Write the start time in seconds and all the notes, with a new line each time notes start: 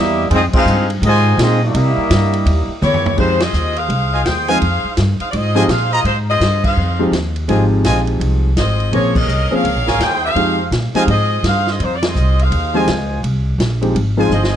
Already playing: E2 G3 A#3 E4 G4 D#5 E5
0.29 F2 G#3 C4 D#4, ride
0.34 C4 F4 G#4 D#5
0.53 G#3 C4 D#4 F4 G#4 C5 F5, muted upright bass stroke, kick, crash
0.65 G2, hi-hat pedal
0.90 ride
1.02 G#2 C3 D#3 G#3 D#5 G#5, ride
1.06 F4 C5
1.37 A#2 G#3 C4 D#4 G#4, snare, hi-hat pedal, ride
1.41 C4 F4 D#5
1.62 G3 A#3 E4 G4 D#5 E5
1.74 C3, ride
1.97 muted upright bass stroke
2.10 G2, snare, hi-hat pedal, ride
2.33 ride
2.45 D#2, ride
2.68 muted upright bass stroke
2.82 E2 A#3 E4 G4 C#5, hi-hat pedal, mid tom
2.94 floor tom
3.06 floor tom
3.16 F2 F3 G#3 C4 D#4 F4 G4 C5, kick, crash
3.40 C4 F4 G#4 D#5, snare, ride
3.53 D#2, hi-hat pedal
3.76 D#4 G#4 C5 F5, ride
3.89 C2, ride
4.13 F4 C5 D#5 G#5
4.24 D#2 D#4 G#4 C5 G5, snare, hi-hat pedal, ride
4.48 F3 G#3 C4 D#4 F4 G#4 C5 D#5 F5 G#5, ride
4.61 F2, ride
4.84 muted upright bass stroke
4.97 G2, snare, hi-hat pedal, ride
5.20 D#4 G#4 C5 F5, muted upright bass stroke, ride
5.30 G#2 C4 D5, ride
5.34 F4 G#4 D#5
5.55 F3 G#3 C4 D#4 F4 G4 C5 D#5 G#5
5.68 A#2 D#4 G#4 C5 F5, snare, hi-hat pedal, ride
5.91 C4 F4 G#4 C5 D#5 A#5
6.04 G#2 G#3 D#4 F4 C5, ride
6.30 C4 F4 G#4 D#5
6.40 G2, snare, hi-hat pedal, ride
6.64 D#4 G#4 C5 F5, kick, crash
6.77 F2
6.99 F3 G#3 C4 D#4 G4
7.12 D#2, snare, hi-hat pedal, ride
7.36 ride
7.48 G#1 F3 G#3 C4 D#4 F4 G4 C5 D#5 G#5, ride
7.84 A#1 F4 C5 D#5 G#5, snare, hi-hat pedal, ride
8.07 ride
8.20 C2, ride
8.56 G#1 C4 F4 G#4 D#5, snare, hi-hat pedal, ride
8.80 ride
8.91 A#1 F3 A#3 C4 C#4 F4 G#4 C#5, ride
9.15 C#4 G#4 A#4 D#5, kick, crash
9.27 C2, hi-hat pedal
9.51 F3 A#3 C4 C#4 G#4 A#4 F5
9.63 C#2, ride
9.75 A#1
9.87 G#1 F4 A#4 C#5 G#5, snare
9.98 D#2 G#4 C5, snare, hi-hat pedal, ride
10.02 D#4 G5
10.25 D#4 G#4 C5 F5
10.35 F2 F3 G#3 C4 D#4 G4, ride
10.71 A#2, snare, hi-hat pedal, ride
10.94 F3 G#3 C4 D#4 F4 G4 G#4 C5 D#5 F5 G#5, muted upright bass stroke, ride
11.07 G#2 C4 F4 G#4 D#5, ride
11.43 G2, snare, hi-hat pedal, ride
11.47 D#4 G#4 C5 F5
11.67 C4 F4 G#4 D#5, snare
11.79 F2 G#3 D#4 F4 C5, ride
11.96 D5
12.03 C4 F4 G#4 D#5, snare, ride
12.15 C2, hi-hat pedal
12.39 D#4 G#4 C5 F5, ride
12.51 D#2, ride
12.74 F3 G#3 C4 D#4 F4 G4 C5 D#5 G#5
12.88 C#2, snare, hi-hat pedal, ride
13.23 C2, ride
13.58 A#1, snare, hi-hat pedal, ride
13.81 F3 G#3 C4 D#4 G4, ride
13.95 G#1, ride
14.17 F3 G#3 C4 D#4 F4 G#4 C5 D#5 G#5
14.30 G1 C4 F4 G#4 D#5, hi-hat pedal
14.43 snare